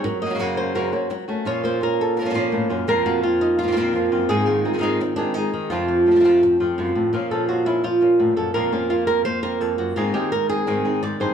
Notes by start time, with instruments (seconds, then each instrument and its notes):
Already playing: nylon-string guitar C#5
0.04 nylon-string guitar F#3 A#4, muted nylon-string guitar stroke
0.22 nylon-string guitar C#3 A#3 D#5
0.26 nylon-string guitar F#3 A#3 C#4 F#4
0.30 nylon-string guitar C#3 F#3 A#3 C#4 F#4
0.35 nylon-string guitar C#3 F#3 A#3 C#4 F#4
0.39 nylon-string guitar F#2 C#3 F#3 A#3 C#4 F#4 C#5
0.57 nylon-string guitar C5
0.75 nylon-string guitar F#2 C#3 F#3 A#3 C#4 F#4 A#4
0.92 nylon-string guitar F#3 A#3 C#4 F#4
1.10 nylon-string guitar F#3, muted nylon-string guitar stroke
1.28 nylon-string guitar F#3 A3 A#3 C#4 F#4
1.45 nylon-string guitar A#2 F3 A#3 C#4 F4 C#5
1.64 nylon-string guitar A#3 C5
1.81 nylon-string guitar A#3 C#4 F4 A#4
2.01 nylon-string guitar A4
2.17 nylon-string guitar A#4, muted nylon-string guitar stroke
2.21 nylon-string guitar F3 A#3 C#4 F4
2.25 nylon-string guitar F3 A#3 C#4 F4
2.30 nylon-string guitar F3 A#3 C#4 F4
2.34 nylon-string guitar A#2 F3 A#3 C#4 F4
2.52 nylon-string guitar A2 F3 A#3 C#4 F4
2.70 nylon-string guitar F#2 A#3 C#4 F4
2.87 nylon-string guitar F2 A#2 F3 A#3 C4 F4 A#4
3.06 nylon-string guitar A#3 F#4
3.23 nylon-string guitar F3 A#3 C4 F4
3.41 nylon-string guitar D#4
3.59 nylon-string guitar F4, muted nylon-string guitar stroke
3.63 nylon-string guitar A#2 F3 A#3 C4 F4
3.68 nylon-string guitar A#2 F3 A#3 C4 F4
3.72 nylon-string guitar A#2 F3 A#3 C4 F4
3.77 nylon-string guitar F2 A#2 F3 A#3 C4 F4
3.93 nylon-string guitar F2 F3 A#3 C4 F4
4.12 nylon-string guitar F#2 F3 A#3 C4 F4
4.29 nylon-string guitar G#2 D#3 G#3 C4 D#4 G#4
4.46 nylon-string guitar D#3 F4
4.65 nylon-string guitar G#3 C4 D#4 G#4
4.73 nylon-string guitar D#3 G#3 C4 D#4 G#4
4.78 nylon-string guitar D#3 G#3 C4 D#4 G#4
4.82 nylon-string guitar G#2 D#3 G#3 C4 D#4 G#4
5.00 nylon-string guitar C4, muted nylon-string guitar stroke
5.16 nylon-string guitar D#3 G#3 C4 D4 D#4 G#4
5.34 nylon-string guitar G#3 C4 D#4 G#4
5.53 nylon-string guitar D#3
5.70 nylon-string guitar F2 C3 F3 A3 C4 F4
5.88 nylon-string guitar F3
6.06 nylon-string guitar F3 A3 C4 F4
6.11 nylon-string guitar C3 F3 A3 C4 F4
6.15 nylon-string guitar C3 F3 A3 C4 F4
6.20 nylon-string guitar C3 F3 A3 C4 F4
6.24 nylon-string guitar F2 C3 F3 A3 C4 F4
6.43 nylon-string guitar C4, muted nylon-string guitar stroke
6.60 nylon-string guitar F3 A3 C4 F4
6.78 nylon-string guitar F#2 F3 A3 C4 F4
6.95 nylon-string guitar A2
7.13 nylon-string guitar A#2 F3 A#3 C#4 F4
7.31 nylon-string guitar F3 A#3 C#4 F4 A4
7.48 nylon-string guitar F3 A#3 C#4 F4 F#4
7.66 nylon-string guitar A#3 C#4 E4 F4
7.84 nylon-string guitar F3 F4, muted nylon-string guitar stroke
8.01 nylon-string guitar A#3 C#4 F4
8.20 nylon-string guitar A2
8.36 nylon-string guitar F#2 A4
8.54 nylon-string guitar F2 A#2 F3 A#3 C4 F4 A#4
8.72 nylon-string guitar F3 A#3 C4 C#4 F4
8.90 nylon-string guitar F3 A#3 C4 F4
9.07 nylon-string guitar F3 A#3 C4 F4 A#4
9.25 nylon-string guitar A#3 C5, muted nylon-string guitar stroke
9.43 nylon-string guitar F3 A#3 C4 F4 A#4
9.61 nylon-string guitar F2 A4
9.78 nylon-string guitar F#2 F#4
9.96 nylon-string guitar G#2 D#3 G#3 C4 D#4 F4 G#4
10.14 nylon-string guitar D#3 G#3 C4 D#4 G4 G#4
10.32 nylon-string guitar A#4, muted nylon-string guitar stroke
10.49 nylon-string guitar G#3 C4 D#4 G#4
10.66 nylon-string guitar G#2 D#3 G#3 C4 D#4 G#4
10.85 nylon-string guitar G#3 C4 D#4 G#4
11.03 nylon-string guitar G#2 D5, muted nylon-string guitar stroke
11.20 nylon-string guitar G2 G#3 C4 D#4 G#4 C5